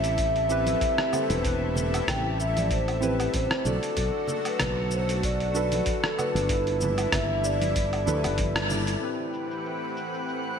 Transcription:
Already playing: A1 C3 G3 A3 C4 E4 G4 A4 C5 E5
0.04 open hi-hat, shaker
0.18 kick, open hi-hat, shaker
0.36 open hi-hat
0.49 C4 E4 G4 B4, shaker
0.66 open hi-hat, high conga, shaker
0.81 kick, open hi-hat, shaker
0.98 cross-stick
1.12 C4 E4 G4 A4 C5, low conga, low woodblock, shaker
1.30 E1 B4, open hi-hat, shaker
1.42 C4 E4 G4, kick, open hi-hat, shaker
1.47 B4
1.76 low conga, shaker
1.94 open hi-hat, low woodblock, shaker
2.08 A1 G5, kick, cross-stick, open hi-hat, low conga, shaker
2.40 E5, shaker
2.57 D5, open hi-hat, high conga, shaker
2.71 C5, kick, open hi-hat, shaker
2.88 open hi-hat, low woodblock
3.01 C4 E4 G4 B4, high conga, shaker
3.20 open hi-hat, low woodblock, shaker
3.34 A1 C5, kick, open hi-hat, shaker
3.51 cross-stick
3.64 B1 D3 F#3 A3 D4 F#4 A4 D5, low conga, shaker
3.83 open hi-hat, shaker
3.94 B1 D4 F#4, kick, open hi-hat, shaker
3.98 A4 D5
4.28 low conga, shaker
4.45 B4, open hi-hat, low woodblock, shaker
4.60 B1, kick, cross-stick, open hi-hat, low conga, shaker
4.91 C5, shaker
5.09 open hi-hat, shaker
5.23 D5, kick, open hi-hat, shaker
5.40 open hi-hat
5.54 D4 F#4 A4 B4, shaker
5.72 open hi-hat, high conga, shaker
5.86 A4, kick, open hi-hat, shaker
6.04 cross-stick
6.17 D4 F#4 A4 B4 D5, low conga, low woodblock, shaker
6.35 G1, open hi-hat, shaker
6.48 E3 G3 D4 E4 A4, kick, open hi-hat, shaker
6.53 B4
6.67 open hi-hat
6.81 high conga, low conga, shaker
6.98 open hi-hat, low woodblock, shaker
7.12 G1 E5, kick, cross-stick, open hi-hat, low conga, shaker
7.44 D5, shaker
7.62 open hi-hat, high conga, shaker
7.76 kick, open hi-hat, shaker
7.93 open hi-hat, low woodblock
8.06 D2 D4 E4 A4 B4, high conga, shaker
8.24 G1, open hi-hat, low woodblock, shaker
8.38 kick, open hi-hat, high conga, shaker
8.56 cross-stick, open hi-hat
8.69 D4 E4 A4 D5, low conga, shaker
8.87 open hi-hat, shaker
9.00 A2 E3 A3 C4 E4 G4 B4 F#5 F#6, shaker
9.05 B4
9.33 shaker
9.51 shaker
9.65 shaker
9.97 shaker
10.14 shaker
10.29 shaker

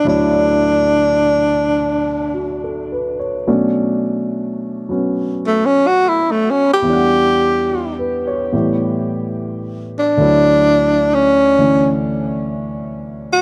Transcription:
Already playing: D3 E3 B3 F#4
0.05 D2 D3 F#3 E4 C#5
0.09 D4
2.34 F#4
2.64 A4
2.92 B4
3.19 C#5
3.47 B2 F#3 A3 C#4 D4
4.89 F#3 B3 C#4
5.47 A3
5.66 C#4
5.87 F#4
6.09 E4
6.31 A3
6.50 C#4
6.73 G4
6.82 E2 E3
6.87 G3 D4
6.93 F#5
7.72 G4
7.99 B4
8.27 C#5
8.53 A2 E3 G3 B3
8.57 C#5
9.99 D4
10.17 D2 D3 F#3
10.21 E4 C#5
11.14 C#4
11.58 D3 E3 A3 C#4
13.33 F#4

